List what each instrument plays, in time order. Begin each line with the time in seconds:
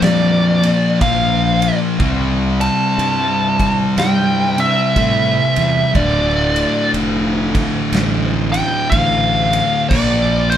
Already playing: distorted electric guitar A#2 F3 A#3
0.02 fingered electric bass F2, lead electric guitar D5, snare, ride
0.62 distorted electric guitar A#2 F3 A#3, ride
1.01 fingered electric bass A#1, distorted electric guitar A#2 F3 A#3, lead electric guitar F5, kick, ride
1.62 ride
1.99 fingered electric bass C2, distorted electric guitar C3 G3 C4, kick, ride
2.61 lead electric guitar A5, ride
2.98 fingered electric bass G2, ride
3.60 kick, ride
3.97 fingered electric bass G2, lead electric guitar G5, snare, ride
4.58 distorted electric guitar C3 G3 C4, lead electric guitar E5, ride
4.96 fingered electric bass A2, distorted electric guitar C3 G3 C4, kick, ride
5.56 fingered electric bass E2, ride
5.94 fingered electric bass D1, distorted electric guitar D2 A2 D3, lead electric guitar D5, kick, ride
6.56 ride
6.94 fingered electric bass F1, ride
7.55 kick, ride
7.92 fingered electric bass A1, snare, ride
8.52 distorted electric guitar D2 A2 D3, lead electric guitar G5, ride
8.90 fingered electric bass A1, distorted electric guitar D2 A2 D3, lead electric guitar F5, kick, ride
9.53 ride
9.89 fingered electric bass A#1, distorted electric guitar A#2 F3 A#3, lead electric guitar D5, kick, crash
10.50 lead electric guitar C5, ride